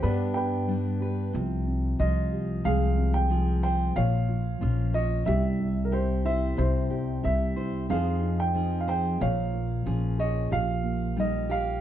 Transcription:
Already playing: steel-string acoustic guitar G4
0.02 steel-string acoustic guitar G2 G3 B3 D4, upright bass G2, felt piano B3 G4, upright piano D4 B4
0.34 felt piano B3, upright piano B4 G5
0.68 steel-string acoustic guitar G3 D4, felt piano D4
1.01 felt piano G4, steel-string acoustic guitar B4
1.33 upright bass C2, steel-string acoustic guitar C3, felt piano F3
1.67 felt piano C4
1.99 upright bass C2, steel-string acoustic guitar F3 F4, felt piano F4, upright piano D#5
2.32 felt piano G4
2.64 upright bass C2, steel-string acoustic guitar C3, felt piano G#3, upright piano G#4 F5
2.98 felt piano C4
3.14 upright piano G5
3.30 steel-string acoustic guitar F3 G#4, felt piano F4
3.63 steel-string acoustic guitar C5, upright piano G5
3.96 upright bass A#1, steel-string acoustic guitar A#2, felt piano F3, upright piano C#5 F5
4.28 felt piano F3
4.61 upright bass A#1, steel-string acoustic guitar F3 F4, felt piano C#4
4.93 felt piano F4, steel-string acoustic guitar C#5, upright piano D#5
5.25 upright bass C2, steel-string acoustic guitar C3, felt piano G3 E4, upright piano G4 E5
5.60 felt piano G3
5.85 upright piano A#4
5.92 felt piano C4, steel-string acoustic guitar E4 G4, upright piano C5
6.24 felt piano E4, steel-string acoustic guitar C5, upright piano E5
6.57 upright bass C2, steel-string acoustic guitar C3, felt piano C4, upright piano E4 C5
6.90 felt piano G3, steel-string acoustic guitar G4
7.23 upright bass C2, felt piano C4, steel-string acoustic guitar E4 G4, upright piano E5
7.56 felt piano E4, steel-string acoustic guitar C5
7.89 steel-string acoustic guitar F2 F3 D#4 G#4 C5, upright bass F2, felt piano C4 G#4, upright piano G#4 F5
8.22 felt piano C4
8.40 upright piano G5
8.55 steel-string acoustic guitar F3 G#4, felt piano D#4
8.80 upright piano F5
8.88 felt piano G#4, steel-string acoustic guitar C5, upright piano G5
9.20 upright bass A#1, steel-string acoustic guitar A#2, felt piano F3, upright piano C#5 F5
9.53 felt piano A#3
9.86 upright bass A#1, steel-string acoustic guitar F3 G#4, felt piano C#4
10.18 felt piano G#4, steel-string acoustic guitar C#5, upright piano D#5
10.51 upright bass A#1, steel-string acoustic guitar A#2, felt piano F3 G4, upright piano F5
10.83 felt piano A#3
11.16 steel-string acoustic guitar G3 F4, felt piano D#4, upright piano D#5
11.49 felt piano G4, steel-string acoustic guitar G4, upright piano F5

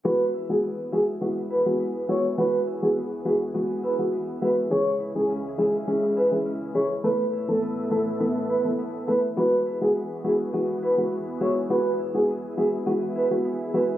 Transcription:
0.05 analog synth pad E2 E3 B3 F#4 G#4, synth pluck E3 G#3 B3 F#4, clean electric guitar E3, soft synth lead B4
0.34 clean electric guitar E4
0.49 synth pluck E3 G#3 B3 F#4, soft synth lead G#4
0.63 clean electric guitar B3
0.92 synth pluck E3 G#3 B3 F#4, clean electric guitar E4, soft synth lead G#4
1.21 synth pluck E3 G#3 B3 F#4, clean electric guitar B3
1.51 clean electric guitar E4, soft synth lead B4
1.66 synth pluck E3 G#3 B3 F#4
1.80 clean electric guitar B3
2.08 synth pluck E3 G#3 B3 F#4, clean electric guitar E4, soft synth lead C#5
2.38 synth pluck E3 G#3 B3 F#4, clean electric guitar E3, soft synth lead B4
2.67 clean electric guitar E4
2.82 synth pluck E3 G#3 B3 F#4, soft synth lead G#4
2.96 clean electric guitar B3
3.25 synth pluck E3 G#3 B3 F#4, clean electric guitar E4, soft synth lead G#4
3.54 synth pluck E3 G#3 B3 F#4, clean electric guitar B3
3.84 clean electric guitar E4, soft synth lead B4
3.99 synth pluck E3 G#3 B3 F#4
4.13 clean electric guitar B3
4.42 synth pluck E3 G#3 B3 F#4, clean electric guitar E4, soft synth lead B4
4.71 analog synth pad C#2 C#3 G#3 E4 G#4, clean electric guitar C#3, synth pluck E3 G#3 C#4 G#4, soft synth lead C#5
5.00 clean electric guitar E4
5.15 synth pluck E3 G#3 C#4 G#4, soft synth lead G#4
5.29 clean electric guitar C#4
5.58 synth pluck E3 G#3 C#4 G#4, clean electric guitar E4, soft synth lead G#4
5.87 synth pluck E3 G#3 C#4 G#4, clean electric guitar C#4
6.16 clean electric guitar E4, soft synth lead B4
6.32 synth pluck E3 G#3 C#4 G#4
6.46 clean electric guitar C#4
6.74 synth pluck E3 G#3 C#4 G#4, clean electric guitar E4, soft synth lead C#5
7.04 analog synth pad A2 E3 B3 A4 E5, synth pluck E3 A3 B3 A4, clean electric guitar A3, soft synth lead B4
7.33 clean electric guitar E4
7.48 synth pluck E3 A3 B3 A4, soft synth lead A4
7.62 clean electric guitar B3
7.91 synth pluck E3 A3 B3 A4, clean electric guitar E4, soft synth lead A4
8.20 synth pluck E3 A3 B3 A4, clean electric guitar B3
8.50 clean electric guitar E4, soft synth lead B4
8.65 synth pluck E3 A3 B3 A4
8.79 clean electric guitar B3
9.07 synth pluck E3 A3 B3 A4, clean electric guitar E4, soft synth lead B4
9.37 analog synth pad E2 B3 F#4 G#4, synth pluck E3 G#3 B3 F#4, clean electric guitar E3, soft synth lead B4
9.66 clean electric guitar E4
9.81 synth pluck E3 G#3 B3 F#4, soft synth lead G#4
9.95 clean electric guitar B3
10.24 synth pluck E3 G#3 B3 F#4, clean electric guitar E4, soft synth lead G#4
10.53 synth pluck E3 G#3 B3 F#4, clean electric guitar B3
10.83 clean electric guitar E4, soft synth lead B4
10.98 synth pluck E3 G#3 B3 F#4
11.12 clean electric guitar B3
11.41 synth pluck E3 G#3 B3 F#4, clean electric guitar E4, soft synth lead C#5
11.70 synth pluck E3 G#3 B3 F#4, clean electric guitar E3, analog synth pad E4, soft synth lead B4
11.99 clean electric guitar E4
12.14 synth pluck E3 G#3 B3 F#4, soft synth lead G#4
12.28 clean electric guitar B3
12.57 synth pluck E3 G#3 B3 F#4, clean electric guitar E4, soft synth lead G#4
12.86 synth pluck E3 G#3 B3 F#4, clean electric guitar B3
13.16 clean electric guitar E4, soft synth lead B4
13.31 synth pluck E3 G#3 B3 F#4
13.45 clean electric guitar B3
13.74 synth pluck E3 G#3 B3 F#4, clean electric guitar E4, soft synth lead B4

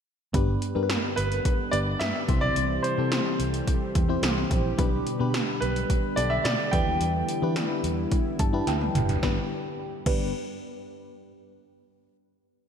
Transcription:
0.33 fingered electric bass G1, fm electric piano G2 B3 D4 G4 B4, analog synth pad D3 G3 B3 G4, kick, closed hi-hat
0.62 closed hi-hat
0.75 fingered electric bass G2, fm electric piano B3 D4 G4 A#4
0.83 fm electric piano B4
0.90 snare, closed hi-hat
1.16 fingered electric bass G1, grand piano B4, closed hi-hat
1.32 closed hi-hat
1.45 kick, closed hi-hat
1.71 fingered electric bass G1, fm electric piano B3 D4 G4 B4, grand piano D5, closed hi-hat
2.00 fingered electric bass G2, grand piano E5, snare, closed hi-hat
2.28 fingered electric bass C2, fm electric piano C3 C4 E4 G4 C5, analog synth pad E3 C4, kick, closed hi-hat
2.41 fingered electric bass B1, grand piano D5
2.56 fingered electric bass C2, closed hi-hat
2.83 grand piano C5, closed hi-hat
2.98 fingered electric bass C3, fm electric piano C4 E4 G4 A4
3.12 snare, closed hi-hat
3.39 fingered electric bass C2, closed hi-hat
3.54 closed hi-hat
3.67 kick, closed hi-hat
3.95 fingered electric bass E2, kick, closed hi-hat
4.09 fm electric piano C4 E4 G4 C5
4.22 fingered electric bass C2, snare, closed hi-hat
4.51 fingered electric bass A#1, kick, closed hi-hat
4.78 fingered electric bass B1, fm electric piano B2 B3 D4 G4 B4, analog synth pad D3 B3, kick, closed hi-hat
5.07 closed hi-hat
5.19 fingered electric bass B2, fm electric piano B3 D4 G4 B4
5.34 snare, closed hi-hat
5.61 fingered electric bass B1, grand piano B4, closed hi-hat
5.76 closed hi-hat
5.90 kick, closed hi-hat
6.16 fingered electric bass B1, fm electric piano B3 D4 G4 A4, grand piano D5, closed hi-hat
6.30 grand piano E5
6.44 fingered electric bass B2, grand piano D5, snare, closed hi-hat
6.71 fingered electric bass E2, fm electric piano E3 D4 E4 G4 B4, analog synth pad G3 E4, grand piano G5, kick, closed hi-hat
6.86 fingered electric bass D#2
7.01 fingered electric bass E2, closed hi-hat
7.29 closed hi-hat
7.42 fingered electric bass E3, fm electric piano D4 E4 G4 B4
7.56 snare, closed hi-hat
7.84 fingered electric bass E2, closed hi-hat
8.12 kick, closed hi-hat
8.39 fingered electric bass G2, fm electric piano A5, kick, closed hi-hat
8.53 fm electric piano D4 E4 G4 B4
8.67 fingered electric bass D2, fm electric piano G5, snare, closed hi-hat
8.81 high tom
8.95 fingered electric bass F#1, closed hi-hat, mid tom
9.09 closed hi-hat, floor tom
9.23 fingered electric bass G1, fm electric piano G2 B3 D4 G4 B4, analog synth pad D3 G3 B3 G4, kick, snare
10.06 fingered electric bass G1, fm electric piano G2 B3 D4 G4 B4, kick, crash

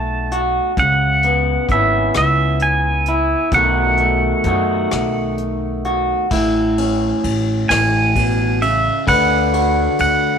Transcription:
Already playing: upright bass B1, clean electric guitar B2 A3 D#4 F#4, pedal steel guitar A5
0.31 clean electric guitar F#4, closed hi-hat
0.77 upright bass C#2, clean electric guitar C#3, pedal steel guitar F#5, kick, closed hi-hat
1.23 clean electric guitar B3, closed hi-hat
1.69 upright bass G#1, clean electric guitar B3 C#4, pedal steel guitar E5, kick, closed hi-hat
1.73 clean electric guitar E4
2.14 upright bass C#2, pedal steel guitar E5, cross-stick, closed hi-hat
2.59 pedal steel guitar G#5, closed hi-hat
3.06 clean electric guitar E4, closed hi-hat
3.52 upright bass B1, clean electric guitar B2 D#3 A3 D#4 F#4, pedal steel guitar F#5, kick, closed hi-hat
3.97 clean electric guitar A3, closed hi-hat
4.44 upright bass F#2, clean electric guitar A3 D#4 F#4, kick, closed hi-hat
4.91 upright bass B1, cross-stick, closed hi-hat
5.38 closed hi-hat
5.84 clean electric guitar F#4, closed hi-hat
6.31 upright bass A1, clean electric guitar A2 E4, kick, crash
6.78 clean electric guitar C#4, ride
7.24 upright bass A1, ride
7.69 upright bass A1, clean electric guitar A2, pedal steel guitar G#5, snare, ride
8.16 clean electric guitar B2, kick, ride
8.62 clean electric guitar C#3, pedal steel guitar E5, ride
9.07 upright bass D2, clean electric guitar D3 B4, pedal steel guitar F#5, kick, ride
9.53 clean electric guitar F#4, ride
9.99 upright bass D2, pedal steel guitar F#5, ride

